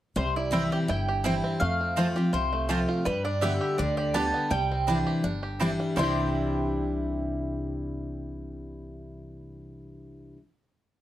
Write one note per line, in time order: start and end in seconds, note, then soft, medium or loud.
0.16 0.67 C2 loud
0.16 0.85 C3 medium
0.16 0.52 G3 medium
0.16 0.36 C5 medium
0.36 0.86 E4 medium
0.36 0.54 D5 medium
0.51 0.86 E3 medium
0.51 0.87 G3 medium
0.51 1.04 G3 medium
0.51 0.62 C4 medium
0.51 0.87 C4 medium
0.51 0.62 E4 medium
0.51 0.87 E4 medium
0.51 0.62 C5 loud
0.51 0.71 E5 medium
0.51 0.62 G5 loud
0.72 1.07 G4 medium
0.72 0.77 G5 medium
0.88 1.39 G1 medium
0.88 1.58 G2 medium
0.88 1.24 E4 medium
0.88 1.41 G5 medium
1.08 1.58 G4 medium
1.24 1.59 E3 medium
1.24 1.60 G3 medium
1.24 1.34 C4 loud
1.24 1.60 C4 medium
1.24 1.34 E4 medium
1.24 1.61 E4 medium
1.24 1.60 E4 loud
1.24 1.34 C5 loud
1.24 1.35 G5 loud
1.44 1.61 C4 medium
1.60 2.30 F2 medium
1.60 2.12 F2 medium
1.60 2.13 A3 medium
1.60 2.35 F5 loud
1.81 2.31 C4 medium
1.96 2.15 F3 medium
1.96 2.16 A3 medium
1.96 2.06 C4 medium
1.96 2.16 C4 medium
1.96 2.07 F4 loud
1.96 2.32 F4 medium
1.96 2.14 F4 medium
1.96 2.07 C5 loud
1.96 2.07 A5 medium
2.16 2.34 C4 soft
2.16 2.33 F4 medium
2.16 2.66 G4 medium
2.33 2.84 C2 medium
2.33 3.03 C3 medium
2.33 2.85 F4 medium
2.33 2.85 C5 medium
2.53 3.03 A3 medium
2.69 3.04 F3 medium
2.69 3.04 A3 medium
2.69 2.79 C4 medium
2.69 3.05 C4 medium
2.69 2.79 F4 medium
2.69 3.05 F4 loud
2.69 3.06 G4 medium
2.69 2.79 C5 loud
2.69 2.80 A5 loud
2.88 3.06 F4 medium
3.05 3.57 G2 medium
3.05 3.75 G2 medium
3.05 3.41 G3 medium
3.05 3.24 B4 loud
3.25 3.78 D4 medium
3.25 3.41 D5 medium
3.41 3.77 D3 medium
3.41 4.51 G3 medium
3.41 3.77 G3 medium
3.41 3.51 B3 medium
3.41 3.78 B3 medium
3.41 3.52 G4 medium
3.41 3.78 G4 medium
3.41 3.52 D5 medium
3.41 3.76 E5 loud
3.41 3.52 G5 loud
3.61 3.97 G4 medium
3.78 4.29 D2 medium
3.78 4.13 D3 medium
3.78 4.14 D4 medium
3.78 3.96 D5 loud
3.97 5.06 G4 medium
3.97 4.14 D5 medium
4.14 4.49 D3 medium
4.14 4.49 G3 medium
4.14 4.24 B3 medium
4.14 4.50 B3 medium
4.14 4.74 D4 medium
4.14 4.24 G4 loud
4.14 4.50 G4 loud
4.14 4.25 D5 loud
4.14 4.25 G5 loud
4.14 4.50 A5 loud
4.34 4.51 B3 medium
4.51 5.02 C2 medium
4.51 5.20 C3 medium
4.51 5.03 G3 medium
4.51 5.56 G5 loud
4.71 5.21 C4 medium
4.87 5.22 E3 medium
4.87 5.23 G3 medium
4.87 4.97 C4 medium
4.87 5.23 D4 medium
4.87 4.97 E4 medium
4.87 5.23 E4 medium
4.87 4.97 D5 loud
4.87 4.98 G5 loud
5.06 5.42 G4 medium
5.24 5.75 G1 medium
5.24 5.93 G2 medium
5.24 5.59 D4 medium
5.43 5.93 G4 medium
5.60 5.95 E3 medium
5.60 5.96 G3 loud
5.60 5.70 C4 loud
5.60 5.97 D4 medium
5.60 5.96 D4 medium
5.60 5.70 E4 loud
5.60 5.96 E4 medium
5.60 5.70 D5 loud
5.60 5.70 G5 loud
5.80 5.96 G3 medium
5.96 10.33 C2 loud
5.96 10.36 C3 medium
5.96 10.37 E3 medium
5.96 10.33 G3 medium
5.96 10.37 G3 medium
5.96 10.36 C4 medium
5.96 10.34 C4 medium
5.96 10.38 D4 loud
5.96 10.37 E4 medium
5.96 10.38 E4 medium
5.96 10.37 D5 medium
5.96 10.38 G5 medium
5.96 10.33 C6 medium
6.01 10.35 E4 medium
6.01 10.36 G4 medium